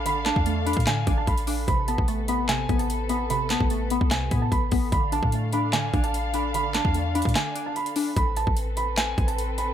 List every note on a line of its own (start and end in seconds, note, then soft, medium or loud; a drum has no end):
0.00 0.32 A1 loud
0.00 0.25 D4 medium
0.00 1.65 D4 medium
0.00 1.65 A4 medium
0.00 1.65 F5 medium
0.06 0.86 D3 loud
0.06 0.25 B5 loud
0.06 closed hi-hat medium
0.26 0.66 D4 medium
0.26 0.45 A5 medium
0.26 snare medium
0.26 clap medium
0.26 closed hi-hat medium
0.36 0.75 E2 loud
0.36 kick loud
0.46 1.48 A3 medium
0.46 closed hi-hat medium
0.66 1.06 D4 medium
0.66 0.85 B5 medium
0.66 closed hi-hat medium
0.73 1.06 A2 loud
0.73 kick medium
0.73 closed hi-hat medium
0.80 closed hi-hat medium
0.87 1.68 D3 medium
0.87 1.15 G#5 medium
0.87 snare loud
0.87 clap loud
0.87 closed hi-hat medium
1.07 1.27 A1 loud
1.07 1.46 D4 medium
1.07 kick loud
1.07 closed hi-hat medium
1.18 1.27 A5 medium
1.27 1.66 A1 loud
1.27 1.66 B5 medium
1.27 kick medium
1.27 closed hi-hat medium
1.38 closed hi-hat medium
1.47 1.68 D4 medium
1.47 open hi-hat medium
1.68 1.97 A1 loud
1.68 2.48 C3 loud
1.68 4.89 C3 medium
1.68 4.89 A4 medium
1.68 4.89 B4 medium
1.68 1.87 B5 loud
1.68 kick loud
1.68 closed hi-hat medium
1.88 2.27 B3 medium
1.88 2.07 A5 medium
1.88 closed hi-hat medium
1.98 2.66 A1 loud
1.98 kick loud
2.08 3.10 A3 medium
2.08 closed hi-hat medium
2.28 2.68 B3 medium
2.28 2.48 B5 medium
2.28 closed hi-hat medium
2.49 3.29 C3 medium
2.49 2.77 G#5 loud
2.49 snare loud
2.49 clap loud
2.49 closed hi-hat medium
2.69 3.57 A1 loud
2.69 3.09 B3 medium
2.69 kick loud
2.69 closed hi-hat soft
2.79 3.08 A5 medium
2.79 closed hi-hat medium
2.90 closed hi-hat medium
3.09 3.50 B3 medium
3.09 3.29 B5 medium
3.09 closed hi-hat medium
3.30 4.10 C3 loud
3.30 3.49 B5 loud
3.30 closed hi-hat medium
3.50 3.90 B3 medium
3.50 3.70 A5 medium
3.50 snare loud
3.50 clap medium
3.50 closed hi-hat medium
3.60 3.99 A1 loud
3.60 kick loud
3.70 4.72 A3 medium
3.70 closed hi-hat medium
3.90 4.30 B3 medium
3.90 4.10 B5 medium
3.90 closed hi-hat medium
4.01 4.30 C2 loud
4.01 kick loud
4.11 4.92 C3 medium
4.11 4.40 G#5 medium
4.11 snare loud
4.11 clap loud
4.11 closed hi-hat medium
4.31 4.51 A2 loud
4.31 4.71 B3 medium
4.31 kick loud
4.31 closed hi-hat medium
4.42 4.51 A5 medium
4.52 4.71 A1 loud
4.52 4.90 B5 medium
4.52 kick medium
4.52 closed hi-hat medium
4.72 4.91 A1 loud
4.72 4.92 B3 medium
4.72 kick loud
4.72 open hi-hat medium
4.92 5.21 A1 loud
4.92 5.72 D3 loud
4.92 8.13 D4 medium
4.92 8.13 A4 medium
4.92 8.13 F5 medium
4.92 5.11 B5 loud
4.92 kick loud
4.92 closed hi-hat medium
5.12 5.53 D4 medium
5.12 5.32 A5 medium
5.12 closed hi-hat medium
5.23 5.91 A2 loud
5.23 kick loud
5.32 6.34 A3 medium
5.32 closed hi-hat medium
5.53 5.92 D4 loud
5.53 5.72 B5 medium
5.53 closed hi-hat medium
5.73 6.53 D3 loud
5.73 6.02 G#5 medium
5.73 snare loud
5.73 clap loud
5.73 closed hi-hat medium
5.94 6.81 A1 loud
5.94 6.33 D4 loud
5.94 kick loud
5.94 closed hi-hat soft
6.04 6.32 A5 medium
6.04 closed hi-hat medium
6.14 closed hi-hat medium
6.34 6.74 D4 medium
6.34 6.53 B5 medium
6.34 closed hi-hat medium
6.54 7.34 D3 loud
6.54 6.74 B5 loud
6.54 closed hi-hat medium
6.74 7.14 D4 medium
6.74 6.94 A5 medium
6.74 snare medium
6.74 clap medium
6.74 closed hi-hat medium
6.85 7.24 E2 loud
6.85 kick loud
6.94 7.96 A3 medium
6.94 closed hi-hat medium
7.15 7.54 D4 medium
7.15 7.34 B5 medium
7.15 closed hi-hat medium
7.22 7.35 A2 loud
7.22 kick loud
7.22 closed hi-hat medium
7.29 closed hi-hat medium
7.35 8.16 D3 loud
7.35 7.64 G#5 medium
7.35 snare loud
7.35 clap loud
7.35 closed hi-hat medium
7.55 7.95 D4 medium
7.55 closed hi-hat medium
7.66 7.76 A5 medium
7.76 8.14 B5 medium
7.76 closed hi-hat medium
7.86 closed hi-hat medium
7.96 8.16 D4 medium
7.96 open hi-hat medium
8.17 8.46 A1 loud
8.17 9.74 C4 medium
8.17 9.74 A4 medium
8.17 9.74 B4 medium
8.17 8.36 B5 loud
8.17 kick loud
8.17 closed hi-hat medium
8.37 8.56 A5 medium
8.37 closed hi-hat medium
8.47 9.15 A1 loud
8.47 kick loud
8.57 closed hi-hat medium
8.77 8.96 B5 medium
8.77 closed hi-hat medium
8.97 9.26 G#5 loud
8.97 snare loud
8.97 clap loud
8.97 closed hi-hat medium
9.18 9.74 A1 loud
9.18 kick loud
9.18 closed hi-hat soft
9.28 9.57 A5 medium
9.28 closed hi-hat medium
9.38 closed hi-hat medium
9.58 9.74 B5 medium
9.58 closed hi-hat medium